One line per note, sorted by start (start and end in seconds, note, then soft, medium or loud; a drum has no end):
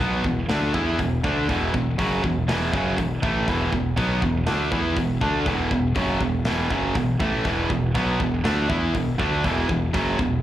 0.00 0.23 B1 loud
0.00 0.24 B2 medium
0.00 0.24 F#3 medium
0.00 0.24 B3 medium
0.24 0.48 E1 medium
0.24 0.44 E2 medium
0.24 0.44 B2 medium
0.24 kick medium
0.49 0.73 D2 medium
0.49 0.73 D3 medium
0.49 0.74 A3 medium
0.49 0.74 D4 medium
0.49 snare loud
0.49 open hi-hat soft
0.74 0.97 E2 medium
0.74 0.98 E3 medium
0.74 0.98 B3 medium
0.74 0.98 E4 medium
0.74 kick loud
0.99 1.22 E1 medium
0.99 1.19 E2 medium
0.99 1.19 B2 medium
0.99 kick medium
0.99 open hi-hat medium
1.24 1.47 D2 medium
1.24 1.48 D3 medium
1.24 1.48 A3 medium
1.24 1.48 D4 medium
1.24 kick loud
1.49 1.72 E1 medium
1.49 1.73 E2 medium
1.49 1.73 B2 medium
1.49 1.73 E3 loud
1.49 kick medium
1.49 open hi-hat soft
1.74 1.97 E1 medium
1.74 1.94 E2 medium
1.74 1.94 B2 medium
1.74 kick medium
1.98 2.22 F#1 medium
1.98 2.23 F#2 medium
1.98 2.23 C#3 medium
1.98 2.23 F#3 medium
1.98 kick loud
1.98 open hi-hat medium
2.24 2.47 E1 medium
2.24 2.44 E2 medium
2.24 2.44 B2 medium
2.24 kick medium
2.48 2.71 E1 medium
2.48 2.72 E2 medium
2.48 2.73 B2 medium
2.48 2.73 E3 medium
2.48 snare loud
2.48 open hi-hat medium
2.73 2.97 F#1 loud
2.73 2.97 F#2 medium
2.73 2.98 C#3 medium
2.73 2.98 F#3 medium
2.73 kick loud
2.98 3.21 E1 medium
2.98 3.18 E2 medium
2.98 3.18 B2 medium
2.98 kick medium
2.98 open hi-hat soft
3.22 3.46 A1 medium
3.22 3.47 A2 medium
3.22 3.46 E3 medium
3.22 3.47 A3 medium
3.22 kick medium
3.47 3.71 E1 medium
3.47 3.72 E2 medium
3.47 3.72 B2 medium
3.47 3.72 E3 loud
3.47 kick medium
3.47 open hi-hat soft
3.72 3.96 E1 medium
3.72 3.93 E2 medium
3.72 3.93 B2 medium
3.72 kick medium
3.97 4.21 B1 medium
3.97 4.21 B2 medium
3.97 4.22 F#3 medium
3.97 4.22 B3 medium
3.97 kick loud
3.97 open hi-hat medium
4.22 4.45 E1 medium
4.22 4.42 E2 medium
4.22 4.43 B2 medium
4.22 kick medium
4.46 4.71 D2 medium
4.46 4.71 D3 medium
4.46 4.71 A3 loud
4.46 4.72 D4 medium
4.46 snare loud
4.46 open hi-hat medium
4.72 4.95 E2 medium
4.72 4.96 E3 medium
4.72 4.96 B3 medium
4.72 4.97 E4 loud
4.72 kick loud
4.96 5.20 E1 medium
4.96 5.17 E2 medium
4.96 5.17 B2 medium
4.96 kick medium
4.96 open hi-hat medium
5.21 5.45 D2 medium
5.21 5.46 D3 medium
5.21 5.46 A3 medium
5.21 5.46 D4 loud
5.21 kick medium
5.46 5.70 E1 medium
5.46 5.69 E2 loud
5.46 5.70 B2 medium
5.46 5.71 E3 loud
5.46 kick medium
5.46 open hi-hat soft
5.70 5.94 E1 medium
5.70 5.91 E2 medium
5.70 5.91 B2 medium
5.70 kick medium
5.95 6.19 F#1 loud
5.95 6.19 F#2 medium
5.95 6.20 C#3 medium
5.95 6.20 F#3 medium
5.95 kick medium
5.95 open hi-hat medium
6.20 6.44 E1 medium
6.20 6.40 E2 medium
6.20 6.41 B2 medium
6.20 kick medium
6.45 6.70 E1 medium
6.45 6.70 E2 medium
6.45 6.70 B2 medium
6.45 6.70 E3 loud
6.45 snare loud
6.45 open hi-hat medium
6.70 6.94 F#1 medium
6.70 6.94 F#2 medium
6.70 6.95 C#3 medium
6.70 6.95 F#3 medium
6.70 kick loud
6.95 7.19 E1 medium
6.95 7.15 E2 medium
6.95 7.15 B2 medium
6.95 kick medium
6.95 open hi-hat medium
7.20 7.44 A1 medium
7.20 7.44 A2 medium
7.20 7.45 E3 medium
7.20 7.45 A3 medium
7.20 kick loud
7.45 7.69 E1 medium
7.45 7.69 E2 medium
7.45 7.69 B2 medium
7.45 7.70 E3 loud
7.45 kick medium
7.45 open hi-hat soft
7.70 7.93 E1 medium
7.70 7.90 E2 medium
7.70 7.90 B2 medium
7.70 kick medium
7.95 8.18 B1 medium
7.95 8.19 B2 medium
7.95 8.19 F#3 medium
7.95 8.20 B3 medium
7.95 kick loud
7.95 open hi-hat soft
8.19 8.43 E1 medium
8.19 8.40 E2 medium
8.19 8.40 B2 medium
8.19 kick medium
8.44 8.68 D2 medium
8.44 8.68 D3 medium
8.44 8.69 A3 medium
8.44 8.69 D4 medium
8.44 snare loud
8.44 open hi-hat soft
8.69 8.93 E2 medium
8.69 8.93 E3 medium
8.69 8.94 B3 medium
8.69 8.94 E4 medium
8.69 kick loud
8.94 9.18 E1 medium
8.94 9.14 E2 medium
8.94 9.14 B2 medium
8.94 kick medium
8.94 open hi-hat soft
9.19 9.43 D2 loud
9.19 9.43 D3 medium
9.19 9.43 A3 medium
9.19 9.44 D4 medium
9.19 kick loud
9.44 9.68 E1 medium
9.44 9.68 E2 loud
9.44 9.69 B2 loud
9.44 9.69 E3 loud
9.44 kick medium
9.44 open hi-hat soft
9.69 9.93 E1 medium
9.69 9.89 E2 medium
9.69 9.90 B2 medium
9.69 kick medium
9.93 10.17 F#1 loud
9.93 10.18 F#2 medium
9.93 10.18 C#3 medium
9.93 10.18 F#3 medium
9.93 kick loud
9.93 open hi-hat medium
10.19 10.42 E1 medium
10.19 10.39 E2 medium
10.19 10.39 B2 medium
10.19 kick medium